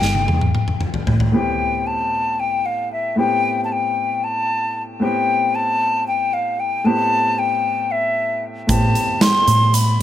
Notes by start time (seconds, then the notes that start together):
Already playing: G5
0.02 G1, snare
0.15 high tom
0.28 E2, high tom
0.41 mid tom
0.55 mid tom
0.68 mid tom
0.81 mid tom
0.94 floor tom
1.07 A2, floor tom
1.20 floor tom
1.32 A2 B3 C4 G4 G5
1.87 A5
2.40 G5
2.66 F5
2.93 E5
3.16 A2 B3 C4 G4 G5
3.64 A5
3.72 G5
4.24 A5
5.00 A2 B3 C4 G4 G5
5.55 A5
6.08 G5
6.33 F5
6.60 G5
6.84 A2 B3 C4 G4 A5
7.39 G5
7.91 E5
8.67 A2 B3 C4 G4 A5, kick, closed hi-hat, shaker
8.95 closed hi-hat
9.21 C6, snare, closed hi-hat
9.48 A2, closed hi-hat, shaker
9.74 B5, closed hi-hat, shaker